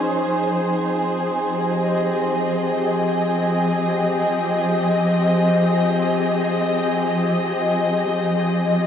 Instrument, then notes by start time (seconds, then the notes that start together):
string section
Already playing: F3 C#4 D#4 G#4 C5
0.30 F3
0.44 C4
1.52 G4
1.62 D#5